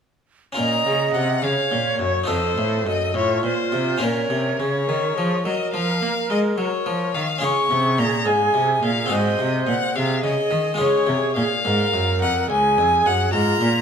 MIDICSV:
0, 0, Header, 1, 5, 480
1, 0, Start_track
1, 0, Key_signature, -5, "minor"
1, 0, Tempo, 571429
1, 487, Time_signature, 12, 3, 24, 8
1, 6242, Tempo, 561798
1, 11697, End_track
2, 0, Start_track
2, 0, Title_t, "Violin"
2, 0, Program_c, 0, 40
2, 472, Note_on_c, 0, 82, 61
2, 929, Note_off_c, 0, 82, 0
2, 957, Note_on_c, 0, 78, 56
2, 1209, Note_on_c, 0, 77, 52
2, 1221, Note_off_c, 0, 78, 0
2, 1678, Note_off_c, 0, 77, 0
2, 1683, Note_on_c, 0, 73, 57
2, 1920, Note_off_c, 0, 73, 0
2, 1935, Note_on_c, 0, 72, 61
2, 2407, Note_off_c, 0, 72, 0
2, 2419, Note_on_c, 0, 75, 63
2, 2653, Note_off_c, 0, 75, 0
2, 2662, Note_on_c, 0, 73, 60
2, 2894, Note_off_c, 0, 73, 0
2, 2910, Note_on_c, 0, 72, 58
2, 3395, Note_on_c, 0, 70, 58
2, 3408, Note_off_c, 0, 72, 0
2, 3857, Note_on_c, 0, 73, 63
2, 3869, Note_off_c, 0, 70, 0
2, 4573, Note_off_c, 0, 73, 0
2, 4586, Note_on_c, 0, 75, 56
2, 4811, Note_off_c, 0, 75, 0
2, 4816, Note_on_c, 0, 77, 66
2, 5280, Note_off_c, 0, 77, 0
2, 5299, Note_on_c, 0, 75, 58
2, 5366, Note_off_c, 0, 75, 0
2, 5522, Note_on_c, 0, 73, 63
2, 6005, Note_on_c, 0, 77, 60
2, 6017, Note_off_c, 0, 73, 0
2, 6242, Note_on_c, 0, 85, 65
2, 6255, Note_off_c, 0, 77, 0
2, 6716, Note_on_c, 0, 82, 65
2, 6729, Note_off_c, 0, 85, 0
2, 6957, Note_on_c, 0, 80, 56
2, 6970, Note_off_c, 0, 82, 0
2, 7440, Note_off_c, 0, 80, 0
2, 7445, Note_on_c, 0, 77, 61
2, 7683, Note_on_c, 0, 75, 63
2, 7696, Note_off_c, 0, 77, 0
2, 8161, Note_off_c, 0, 75, 0
2, 8166, Note_on_c, 0, 78, 67
2, 8402, Note_on_c, 0, 77, 66
2, 8415, Note_off_c, 0, 78, 0
2, 8631, Note_off_c, 0, 77, 0
2, 8637, Note_on_c, 0, 75, 61
2, 9110, Note_off_c, 0, 75, 0
2, 9122, Note_on_c, 0, 73, 67
2, 9593, Note_off_c, 0, 73, 0
2, 9600, Note_on_c, 0, 77, 71
2, 10309, Note_off_c, 0, 77, 0
2, 10331, Note_on_c, 0, 78, 71
2, 10564, Note_off_c, 0, 78, 0
2, 10573, Note_on_c, 0, 80, 71
2, 11051, Note_on_c, 0, 78, 72
2, 11064, Note_off_c, 0, 80, 0
2, 11279, Note_off_c, 0, 78, 0
2, 11284, Note_on_c, 0, 82, 82
2, 11697, Note_off_c, 0, 82, 0
2, 11697, End_track
3, 0, Start_track
3, 0, Title_t, "Flute"
3, 0, Program_c, 1, 73
3, 487, Note_on_c, 1, 75, 62
3, 1213, Note_on_c, 1, 73, 50
3, 1226, Note_off_c, 1, 75, 0
3, 1915, Note_on_c, 1, 69, 52
3, 1928, Note_off_c, 1, 73, 0
3, 2646, Note_off_c, 1, 69, 0
3, 2651, Note_on_c, 1, 65, 48
3, 3365, Note_on_c, 1, 73, 56
3, 3377, Note_off_c, 1, 65, 0
3, 4085, Note_off_c, 1, 73, 0
3, 4090, Note_on_c, 1, 70, 48
3, 4330, Note_on_c, 1, 68, 52
3, 4342, Note_off_c, 1, 70, 0
3, 4573, Note_on_c, 1, 70, 51
3, 4586, Note_off_c, 1, 68, 0
3, 6006, Note_off_c, 1, 70, 0
3, 6238, Note_on_c, 1, 68, 56
3, 7687, Note_on_c, 1, 72, 55
3, 7700, Note_off_c, 1, 68, 0
3, 8393, Note_off_c, 1, 72, 0
3, 8398, Note_on_c, 1, 68, 49
3, 9106, Note_off_c, 1, 68, 0
3, 9122, Note_on_c, 1, 68, 57
3, 9828, Note_off_c, 1, 68, 0
3, 9841, Note_on_c, 1, 70, 57
3, 10561, Note_on_c, 1, 68, 54
3, 10574, Note_off_c, 1, 70, 0
3, 11275, Note_on_c, 1, 65, 55
3, 11288, Note_off_c, 1, 68, 0
3, 11697, Note_off_c, 1, 65, 0
3, 11697, End_track
4, 0, Start_track
4, 0, Title_t, "Harpsichord"
4, 0, Program_c, 2, 6
4, 440, Note_on_c, 2, 61, 37
4, 456, Note_on_c, 2, 65, 37
4, 465, Note_on_c, 2, 70, 35
4, 479, Note_on_c, 2, 46, 41
4, 700, Note_off_c, 2, 46, 0
4, 726, Note_on_c, 2, 49, 38
4, 944, Note_off_c, 2, 49, 0
4, 964, Note_on_c, 2, 48, 37
4, 1183, Note_off_c, 2, 48, 0
4, 1195, Note_on_c, 2, 49, 41
4, 1417, Note_off_c, 2, 49, 0
4, 1440, Note_on_c, 2, 46, 41
4, 1659, Note_off_c, 2, 46, 0
4, 1674, Note_on_c, 2, 42, 40
4, 1870, Note_off_c, 2, 61, 0
4, 1878, Note_off_c, 2, 65, 0
4, 1878, Note_on_c, 2, 63, 38
4, 1882, Note_off_c, 2, 70, 0
4, 1892, Note_on_c, 2, 65, 37
4, 1896, Note_off_c, 2, 42, 0
4, 1904, Note_on_c, 2, 69, 36
4, 1919, Note_on_c, 2, 41, 39
4, 2141, Note_off_c, 2, 41, 0
4, 2166, Note_on_c, 2, 45, 38
4, 2386, Note_off_c, 2, 45, 0
4, 2407, Note_on_c, 2, 42, 38
4, 2628, Note_off_c, 2, 42, 0
4, 2640, Note_on_c, 2, 45, 39
4, 2863, Note_off_c, 2, 45, 0
4, 2883, Note_on_c, 2, 46, 41
4, 3104, Note_off_c, 2, 46, 0
4, 3128, Note_on_c, 2, 48, 42
4, 3317, Note_off_c, 2, 63, 0
4, 3324, Note_off_c, 2, 65, 0
4, 3330, Note_off_c, 2, 69, 0
4, 3339, Note_on_c, 2, 61, 36
4, 3347, Note_off_c, 2, 48, 0
4, 3347, Note_on_c, 2, 65, 36
4, 3357, Note_on_c, 2, 70, 36
4, 3372, Note_on_c, 2, 46, 42
4, 3590, Note_off_c, 2, 46, 0
4, 3614, Note_on_c, 2, 48, 36
4, 3831, Note_off_c, 2, 48, 0
4, 3863, Note_on_c, 2, 49, 38
4, 4075, Note_off_c, 2, 49, 0
4, 4108, Note_on_c, 2, 51, 40
4, 4317, Note_off_c, 2, 51, 0
4, 4350, Note_on_c, 2, 53, 39
4, 4558, Note_off_c, 2, 53, 0
4, 4582, Note_on_c, 2, 54, 39
4, 4793, Note_off_c, 2, 54, 0
4, 4820, Note_on_c, 2, 53, 43
4, 5031, Note_off_c, 2, 53, 0
4, 5059, Note_on_c, 2, 58, 39
4, 5269, Note_off_c, 2, 58, 0
4, 5294, Note_on_c, 2, 56, 40
4, 5505, Note_off_c, 2, 56, 0
4, 5525, Note_on_c, 2, 54, 38
4, 5739, Note_off_c, 2, 54, 0
4, 5764, Note_on_c, 2, 53, 41
4, 5978, Note_off_c, 2, 53, 0
4, 6002, Note_on_c, 2, 51, 42
4, 6189, Note_off_c, 2, 61, 0
4, 6193, Note_off_c, 2, 65, 0
4, 6198, Note_off_c, 2, 70, 0
4, 6203, Note_on_c, 2, 61, 38
4, 6217, Note_off_c, 2, 51, 0
4, 6218, Note_on_c, 2, 65, 39
4, 6229, Note_on_c, 2, 68, 39
4, 6240, Note_on_c, 2, 49, 43
4, 6459, Note_off_c, 2, 49, 0
4, 6479, Note_on_c, 2, 48, 41
4, 6698, Note_off_c, 2, 48, 0
4, 6715, Note_on_c, 2, 46, 42
4, 6935, Note_off_c, 2, 46, 0
4, 6947, Note_on_c, 2, 44, 44
4, 7171, Note_off_c, 2, 44, 0
4, 7189, Note_on_c, 2, 48, 42
4, 7412, Note_off_c, 2, 48, 0
4, 7436, Note_on_c, 2, 46, 39
4, 7631, Note_off_c, 2, 61, 0
4, 7634, Note_on_c, 2, 60, 37
4, 7639, Note_off_c, 2, 65, 0
4, 7644, Note_off_c, 2, 68, 0
4, 7648, Note_on_c, 2, 66, 40
4, 7656, Note_off_c, 2, 46, 0
4, 7662, Note_on_c, 2, 68, 37
4, 7677, Note_on_c, 2, 44, 43
4, 7897, Note_off_c, 2, 44, 0
4, 7915, Note_on_c, 2, 48, 41
4, 8135, Note_off_c, 2, 48, 0
4, 8152, Note_on_c, 2, 46, 45
4, 8372, Note_off_c, 2, 46, 0
4, 8401, Note_on_c, 2, 48, 39
4, 8617, Note_off_c, 2, 48, 0
4, 8638, Note_on_c, 2, 49, 43
4, 8856, Note_off_c, 2, 49, 0
4, 8870, Note_on_c, 2, 51, 44
4, 9063, Note_off_c, 2, 60, 0
4, 9070, Note_off_c, 2, 66, 0
4, 9071, Note_on_c, 2, 56, 41
4, 9077, Note_off_c, 2, 68, 0
4, 9084, Note_on_c, 2, 65, 41
4, 9092, Note_off_c, 2, 51, 0
4, 9099, Note_on_c, 2, 68, 40
4, 9108, Note_on_c, 2, 49, 44
4, 9329, Note_off_c, 2, 56, 0
4, 9331, Note_off_c, 2, 49, 0
4, 9348, Note_on_c, 2, 48, 41
4, 9571, Note_off_c, 2, 48, 0
4, 9603, Note_on_c, 2, 46, 40
4, 9819, Note_off_c, 2, 46, 0
4, 9847, Note_on_c, 2, 44, 46
4, 10061, Note_off_c, 2, 44, 0
4, 10090, Note_on_c, 2, 42, 43
4, 10305, Note_off_c, 2, 42, 0
4, 10337, Note_on_c, 2, 41, 43
4, 10548, Note_off_c, 2, 41, 0
4, 10572, Note_on_c, 2, 37, 45
4, 10784, Note_off_c, 2, 37, 0
4, 10814, Note_on_c, 2, 41, 44
4, 11023, Note_off_c, 2, 41, 0
4, 11052, Note_on_c, 2, 42, 44
4, 11262, Note_off_c, 2, 42, 0
4, 11284, Note_on_c, 2, 44, 46
4, 11498, Note_off_c, 2, 44, 0
4, 11522, Note_on_c, 2, 46, 50
4, 11697, Note_off_c, 2, 46, 0
4, 11697, Note_off_c, 2, 65, 0
4, 11697, Note_off_c, 2, 68, 0
4, 11697, End_track
5, 0, Start_track
5, 0, Title_t, "Cello"
5, 0, Program_c, 3, 42
5, 486, Note_on_c, 3, 46, 45
5, 711, Note_off_c, 3, 46, 0
5, 725, Note_on_c, 3, 49, 48
5, 963, Note_off_c, 3, 49, 0
5, 969, Note_on_c, 3, 48, 46
5, 1202, Note_off_c, 3, 48, 0
5, 1207, Note_on_c, 3, 49, 49
5, 1274, Note_off_c, 3, 49, 0
5, 1446, Note_on_c, 3, 46, 46
5, 1671, Note_off_c, 3, 46, 0
5, 1676, Note_on_c, 3, 42, 44
5, 1917, Note_off_c, 3, 42, 0
5, 1920, Note_on_c, 3, 41, 47
5, 2158, Note_off_c, 3, 41, 0
5, 2163, Note_on_c, 3, 45, 47
5, 2402, Note_on_c, 3, 42, 45
5, 2415, Note_off_c, 3, 45, 0
5, 2652, Note_on_c, 3, 45, 50
5, 2664, Note_off_c, 3, 42, 0
5, 2894, Note_off_c, 3, 45, 0
5, 2898, Note_on_c, 3, 46, 46
5, 2965, Note_off_c, 3, 46, 0
5, 3135, Note_on_c, 3, 48, 46
5, 3370, Note_off_c, 3, 48, 0
5, 3374, Note_on_c, 3, 46, 45
5, 3610, Note_off_c, 3, 46, 0
5, 3615, Note_on_c, 3, 48, 48
5, 3851, Note_off_c, 3, 48, 0
5, 3862, Note_on_c, 3, 49, 48
5, 4096, Note_on_c, 3, 51, 45
5, 4109, Note_off_c, 3, 49, 0
5, 4329, Note_off_c, 3, 51, 0
5, 4334, Note_on_c, 3, 53, 47
5, 4568, Note_off_c, 3, 53, 0
5, 4581, Note_on_c, 3, 54, 42
5, 4648, Note_off_c, 3, 54, 0
5, 4820, Note_on_c, 3, 53, 50
5, 5049, Note_off_c, 3, 53, 0
5, 5055, Note_on_c, 3, 58, 50
5, 5122, Note_off_c, 3, 58, 0
5, 5294, Note_on_c, 3, 56, 48
5, 5517, Note_off_c, 3, 56, 0
5, 5522, Note_on_c, 3, 54, 53
5, 5590, Note_off_c, 3, 54, 0
5, 5769, Note_on_c, 3, 53, 48
5, 6000, Note_off_c, 3, 53, 0
5, 6006, Note_on_c, 3, 51, 47
5, 6073, Note_off_c, 3, 51, 0
5, 6232, Note_on_c, 3, 49, 47
5, 6301, Note_off_c, 3, 49, 0
5, 6474, Note_on_c, 3, 48, 53
5, 6722, Note_on_c, 3, 46, 51
5, 6734, Note_off_c, 3, 48, 0
5, 6965, Note_on_c, 3, 44, 48
5, 6978, Note_off_c, 3, 46, 0
5, 7192, Note_off_c, 3, 44, 0
5, 7197, Note_on_c, 3, 48, 48
5, 7432, Note_off_c, 3, 48, 0
5, 7437, Note_on_c, 3, 46, 43
5, 7676, Note_off_c, 3, 46, 0
5, 7683, Note_on_c, 3, 44, 52
5, 7920, Note_off_c, 3, 44, 0
5, 7926, Note_on_c, 3, 48, 52
5, 8160, Note_off_c, 3, 48, 0
5, 8164, Note_on_c, 3, 46, 48
5, 8232, Note_off_c, 3, 46, 0
5, 8406, Note_on_c, 3, 48, 54
5, 8638, Note_off_c, 3, 48, 0
5, 8643, Note_on_c, 3, 49, 51
5, 8711, Note_off_c, 3, 49, 0
5, 8879, Note_on_c, 3, 51, 50
5, 8948, Note_off_c, 3, 51, 0
5, 9126, Note_on_c, 3, 49, 46
5, 9195, Note_off_c, 3, 49, 0
5, 9368, Note_on_c, 3, 48, 51
5, 9437, Note_off_c, 3, 48, 0
5, 9607, Note_on_c, 3, 46, 49
5, 9675, Note_off_c, 3, 46, 0
5, 9847, Note_on_c, 3, 44, 54
5, 10081, Note_off_c, 3, 44, 0
5, 10091, Note_on_c, 3, 42, 50
5, 10334, Note_on_c, 3, 41, 48
5, 10347, Note_off_c, 3, 42, 0
5, 10568, Note_off_c, 3, 41, 0
5, 10573, Note_on_c, 3, 37, 53
5, 10811, Note_on_c, 3, 41, 53
5, 10823, Note_off_c, 3, 37, 0
5, 11045, Note_off_c, 3, 41, 0
5, 11049, Note_on_c, 3, 42, 52
5, 11279, Note_off_c, 3, 42, 0
5, 11283, Note_on_c, 3, 44, 56
5, 11515, Note_off_c, 3, 44, 0
5, 11520, Note_on_c, 3, 46, 50
5, 11697, Note_off_c, 3, 46, 0
5, 11697, End_track
0, 0, End_of_file